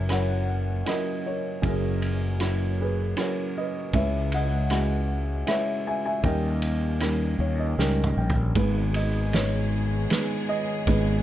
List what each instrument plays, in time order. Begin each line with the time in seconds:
Already playing: fretless electric bass F#1, felt piano F#1 F#2 F#3 C#4 E4 A#4 C#5 E5
0.09 felt piano F#3 C#4 E4 A#4 F#5, cross-stick, ride
0.13 felt piano C#5
0.85 felt piano F#3 C#4 E4 A#4 D#5, cross-stick, ride
0.90 felt piano A#4
1.26 felt piano A#4 C#5
1.62 felt piano F#1 F#2 F#3 C#4 E4 F#4 G#4 A#4, fretless electric bass F#1, kick, ride
2.02 ride
2.39 felt piano F#3 C#4 E4 F#4, cross-stick, ride
2.81 felt piano G#4 B4
3.17 felt piano F#3 C#4 E4 A#4 C#5, cross-stick, ride
3.58 felt piano B4 D#5
3.93 fretless electric bass C#2, felt piano C#2 C#3 G#3 C#4 E4 B4 C#5 E5, kick, ride
4.32 felt piano D#5 F#5, ride
4.70 felt piano G#3 C#4 E4 F#4, cross-stick, ride
5.46 felt piano G#3 C#4 E4 B4 C#5 E5, cross-stick, ride
5.87 felt piano E5 G#5
6.05 felt piano E5 G#5
6.23 felt piano D#2 D#3 G3 C#4 D#4 A#4 D#5 G5, fretless electric bass D#2, kick, ride
6.62 ride
7.00 felt piano G3 C#4 D#4 A#4, cross-stick, ride
7.39 fretless electric bass D#2, felt piano C#5
7.59 felt piano D#5
7.78 fretless electric bass C#2, felt piano G3 C#4 D#4 A#4 G5, snare
8.04 mid tom
8.17 fretless electric bass A#1, felt piano G5
8.30 floor tom
8.55 fretless electric bass G#1, felt piano G#1 G#2 G#3 B3 D#4 B4, string section D#3 G#3 B3 G#4, kick, ride
8.94 felt piano D#5, ride
9.33 felt piano G#3 B3 D#4 B4 C#5, snare, ride
10.10 felt piano G#3 B3 D#4 B4, snare, ride
10.49 felt piano D#5
10.87 fretless electric bass G#1, felt piano G#1 G#2 G#3 B3 D#4 B4, kick, ride